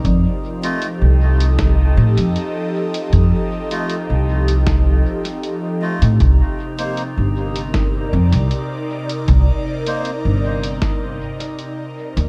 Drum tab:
HH |x--xx--xx--xx--x|x--xx--xx--xx--x|x--xx--xx--xx--x|x--xx--xx--xx--x|
SD |--------o-------|--------o-------|--------o-------|--------o-------|
BD |o-------o-------|o-------o-------|o-------o-------|o-------o-------|